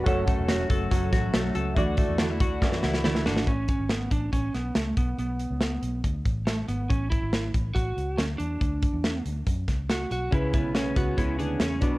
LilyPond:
<<
  \new Staff \with { instrumentName = "Synth keys" } { \time 4/4 \key a \major \tempo 4 = 140 <fis' a' cis''>1 | <e' fis' d''>1 | r1 | r1 |
r1 | r1 | <cis' e' b'>2.~ <cis' e' b'>8 <d' fis' b'>8 | }
  \new Staff \with { instrumentName = "Lead electric guitar" } { \time 4/4 \key a \major r1 | r2. e'8 d'8 | cis'8 cis'8 b8 d'8 cis'8 b8 a8 b8 | b2 r4 a8 b8 |
cis'8 e'4 r8 fis'4 cis'8 d'8~ | d'4. r4. fis'8 fis'8 | e'8 e'8 cis'8 fis'8 e'8 d'8 cis'8 d'8 | }
  \new Staff \with { instrumentName = "Clean electric guitar" } { \time 4/4 \key a \major <fis, a'>8 a8 fis'8 a'8 fis8 fis'8 a8 a'8 | fis'8 a8 d'16 e'16 fis'8 e8 e'8 a8 fis'8 | r1 | r1 |
r1 | r1 | cis8 b8 cis'8 b8 cis'8 gis'8 cis'8 b,8 | }
  \new Staff \with { instrumentName = "Steel-string acoustic guitar" } { \time 4/4 \key a \major <fis a cis' fis'>8 <a cis' fis'>8 <fis a cis' fis'>8 <a cis' fis'>8 <fis a cis' fis'>8 <a cis' fis'>8 <fis a cis' fis'>8 <a cis' fis'>8 | <d e a d' fis'>8 <a d' fis'>8 <d e a d' fis'>8 <a d' fis'>8 <e a d' fis'>8 <a d' fis'>8 <d e a d' fis'>8 <a d' fis'>8 | r1 | r1 |
r1 | r1 | <cis gis b e'>8 <gis b e'>8 <cis gis b e'>8 <gis b e'>8 <cis gis b e'>8 <gis b e'>8 <cis gis b e'>8 <fis b d'>8 | }
  \new Staff \with { instrumentName = "Fingered electric bass" } { \clef bass \time 4/4 \key a \major fis,,8. e,,8. fis,,8 fis,,8 a,,8 b,,8 cis,8 | d,8. e,8. d,8 fis,8 cis,4 gis,,8 | a,,8. gis,,8. a,,8 a,,8 b,,8 cis,8 b,,8 | b,,8. cis,8. b,,8 d,8 a,,4 gis,,8 |
a,,8. gis,,8. a,,8 a,,8 cis,8 d,8 e,8 | d,8. e,8. d,8 fis,8 cis,4 b,,8 | cis,8. b,,8. cis,8 cis,8 d,8 e,8 b,,8 | }
  \new DrumStaff \with { instrumentName = "Drums" } \drummode { \time 4/4 <hh bd>8 <hh bd>8 <hh sn>8 <hh bd>8 <hh bd>8 <hh bd sn>8 <hh sn>8 hh8 | <hh bd>8 <hh bd>8 <hh sn>8 <hh bd>8 <bd sn>16 sn16 sn16 sn16 sn16 sn16 sn16 sn16 | <hh bd>8 <hh bd>8 <hh sn>8 <hh bd>8 <hh bd>8 <hh sn>8 <hh sn>8 <hh bd>8 | hh8 hh8 <hh sn>8 hh8 <hh bd>8 <hh bd>8 <hh sn>8 hh8 |
<hh bd>8 <hh bd>8 <hh sn>8 <hh bd>8 <hh bd>8 hh8 <hh sn>8 hh8 | <hh bd>8 <hh bd>8 <hh sn>8 hh8 <hh bd>8 <hh bd sn>8 <hh sn>8 hh8 | <hh bd>8 <hh bd>8 <hh sn>8 <hh bd>8 <hh bd>8 hh8 <hh sn>8 <hh bd>8 | }
>>